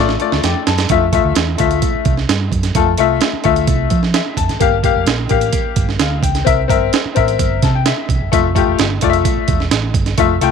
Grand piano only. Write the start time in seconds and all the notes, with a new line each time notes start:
Already playing: F4
0.00 D5
0.19 A3 F4 D5
0.44 G5
0.67 A5
0.90 A3 F4 E5
1.12 A3 F4 E5
1.58 A3 F4 E5
2.75 A3 F4 A4
2.98 A3 F4 E5
3.44 A3 F4 E5
4.15 E5
4.37 A5
4.60 A#3 G4 F5
4.83 A#3 G4 F5
5.29 A#3 G4 F5
6.01 F5
6.23 G5
6.45 C4 A#4 E5
6.68 C4 A#4 E5
7.15 C4 A#4 E5
7.63 A5
7.75 G5
7.87 E5
8.32 A3 F4 E5
8.55 A3 F4 G4
9.02 A3 F4 D5
9.10 E5
10.18 A3 F4 E5
10.41 A3 F4 G5